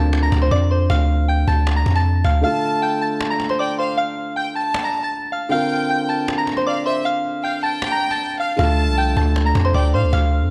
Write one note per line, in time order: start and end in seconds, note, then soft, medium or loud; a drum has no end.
0.00 0.31 D2 loud
0.00 2.39 D3 medium
0.00 2.39 C4 medium
0.00 2.40 F4 medium
0.00 2.41 A#4 medium
0.00 0.21 A5 medium
0.00 0.21 A6 medium
0.13 cajon slap loud
0.23 0.37 A#5 medium
0.23 0.38 A#6 medium
0.32 0.51 D2 loud
0.32 cajon bass loud
0.32 cajon slap medium
0.39 0.49 C6 medium
0.39 cajon slap soft
0.42 0.49 C5 medium
0.42 cajon slap medium
0.45 cajon slap soft
0.51 0.88 F2 loud
0.51 0.66 D5 medium
0.51 0.66 D6 loud
0.51 cajon bass medium
0.71 0.86 C5 medium
0.71 0.85 C6 medium
0.71 cajon slap soft
0.75 cajon slap soft
0.80 cajon slap soft
0.85 cajon slap soft
0.90 1.45 D2 loud
0.90 1.26 F5 loud
0.90 1.26 F6 medium
0.90 cajon bass loud
1.28 1.43 G5 medium
1.28 1.44 G6 medium
1.47 1.84 D2 loud
1.47 1.75 A5 medium
1.47 1.75 A6 medium
1.47 cajon bass medium
1.67 cajon slap loud
1.76 1.91 A#5 medium
1.76 1.91 A#6 medium
1.86 2.23 F2 loud
1.86 cajon bass loud
1.96 2.23 A5 medium
1.96 2.23 A6 medium
1.96 cajon slap medium
2.24 2.44 D2 loud
2.24 2.39 F5 medium
2.24 2.40 F6 medium
2.24 cajon bass loud
2.41 5.46 D3 medium
2.41 5.47 A3 medium
2.41 5.48 F4 medium
2.41 2.80 F5 medium
2.41 3.17 A5 loud
2.41 2.80 F6 medium
2.41 cajon slap soft
2.46 5.48 A4 medium
2.63 cajon slap soft
2.69 cajon slap soft
2.76 cajon slap soft
2.82 2.97 G5 medium
2.82 2.97 G6 medium
2.82 cajon slap soft
3.01 3.28 A5 medium
3.01 3.29 A6 medium
3.21 cajon slap loud
3.30 3.45 A#5 medium
3.30 3.46 A#6 medium
3.40 cajon slap medium
3.46 cajon slap soft
3.49 3.57 C5 medium
3.49 3.57 C6 medium
3.49 cajon slap medium
3.53 cajon slap soft
3.59 3.74 D5 medium
3.59 3.77 G5 medium
3.59 3.74 D6 medium
3.59 cajon slap soft
3.78 3.94 C5 medium
3.78 3.96 F5 medium
3.78 3.93 C6 medium
3.78 cajon slap soft
3.83 cajon slap soft
3.88 cajon slap soft
3.93 cajon slap soft
3.97 4.34 F5 loud
3.97 4.34 F6 medium
3.97 cajon slap soft
4.17 cajon slap soft
4.36 4.51 G5 medium
4.36 4.54 G5 medium
4.36 4.51 G6 medium
4.36 cajon slap soft
4.55 5.09 A5 medium
4.55 4.82 A5 medium
4.55 4.83 A6 medium
4.74 cajon slap loud
4.84 4.99 A#5 medium
4.84 4.99 A#6 medium
4.94 cajon slap soft
5.03 5.30 A5 medium
5.03 5.31 A6 medium
5.13 cajon slap soft
5.19 cajon slap soft
5.26 cajon slap soft
5.32 5.47 F5 medium
5.32 5.47 F6 medium
5.32 cajon slap soft
5.49 8.54 D3 medium
5.49 8.55 C4 medium
5.49 8.55 F4 medium
5.49 5.88 F5 loud
5.49 6.24 G5 loud
5.49 5.88 F6 medium
5.49 cajon slap soft
5.54 8.56 A#4 medium
5.70 cajon slap soft
5.77 cajon slap soft
5.83 cajon slap soft
5.90 6.05 G5 medium
5.90 6.05 G6 medium
5.90 cajon slap soft
6.09 6.36 A5 medium
6.09 6.36 A6 medium
6.28 cajon slap loud
6.38 6.52 A#5 medium
6.38 6.53 A#6 medium
6.47 cajon slap loud
6.54 6.64 C6 medium
6.54 cajon slap soft
6.57 6.65 C5 medium
6.57 cajon slap medium
6.60 cajon slap soft
6.67 6.82 D5 medium
6.67 6.85 F5 medium
6.67 6.81 D6 loud
6.67 cajon slap soft
6.86 7.01 C5 medium
6.86 7.04 E5 medium
6.86 7.01 C6 medium
6.86 cajon slap soft
6.91 cajon slap soft
6.96 cajon slap soft
7.00 cajon slap soft
7.05 7.41 F5 loud
7.05 7.42 F6 medium
7.05 cajon slap soft
7.24 cajon slap soft
7.43 7.62 F5 medium
7.43 7.58 G5 medium
7.43 7.59 G6 medium
7.43 cajon slap soft
7.63 8.36 G5 medium
7.63 7.90 A5 medium
7.63 7.90 A6 medium
7.63 cajon slap soft
7.82 cajon slap loud
7.92 8.06 A#5 medium
7.92 8.07 A#6 medium
8.01 cajon slap soft
8.11 8.38 A5 medium
8.11 8.38 A6 medium
8.11 cajon slap medium
8.21 cajon slap soft
8.27 cajon slap soft
8.33 cajon slap soft
8.40 8.58 F5 medium
8.40 8.54 F5 medium
8.40 8.55 F6 medium
8.40 cajon slap soft
8.56 8.89 D2 loud
8.56 10.51 D3 medium
8.56 10.51 A3 medium
8.56 10.51 F4 medium
8.56 8.95 F5 medium
8.56 9.32 A5 loud
8.56 8.96 F6 medium
8.56 cajon bass loud
8.61 10.51 A4 medium
8.78 cajon slap soft
8.85 9.15 C2 loud
8.85 cajon slap soft
8.91 cajon slap soft
8.97 9.12 G5 medium
8.97 9.13 G6 medium
8.97 cajon slap soft
9.17 9.54 D2 loud
9.17 9.44 A5 medium
9.17 9.44 A6 medium
9.17 cajon bass medium
9.36 cajon slap loud
9.46 9.60 A#5 medium
9.46 9.61 A#6 medium
9.55 9.74 F2 loud
9.55 cajon bass loud
9.55 cajon slap loud
9.62 9.72 C6 medium
9.62 cajon slap soft
9.65 9.73 C5 medium
9.65 cajon slap medium
9.68 cajon slap soft
9.74 9.95 D2 loud
9.74 9.90 D5 medium
9.74 9.93 G5 medium
9.74 9.89 D6 medium
9.74 cajon bass medium
9.93 10.05 A2 loud
9.93 10.09 C5 medium
9.93 10.12 F5 medium
9.93 10.08 C6 medium
9.93 cajon slap soft
9.98 cajon slap soft
10.03 10.12 D2 loud
10.03 cajon slap soft
10.08 cajon slap soft
10.13 10.43 D2 loud
10.13 10.49 F5 loud
10.13 10.49 F6 medium
10.13 cajon bass loud
10.32 cajon slap soft
10.42 10.51 F2 loud